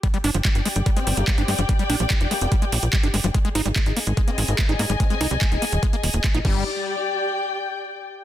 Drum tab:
CC |----------------|----------------|----------------|--------------x-|
HH |xxoxxxoxxxoxxxox|xxoxxxoxxxoxxxox|xxoxxxoxxxoxxxox|xxoxxxoxxxoxxx--|
CP |----x-------x---|----x-------x---|----x-------x---|----x-------x---|
BD |o---o---o---o---|o---o---o---o---|o---o---o---o---|o---o---o---o-o-|

CC |----------------|
HH |----------------|
CP |----------------|
BD |----------------|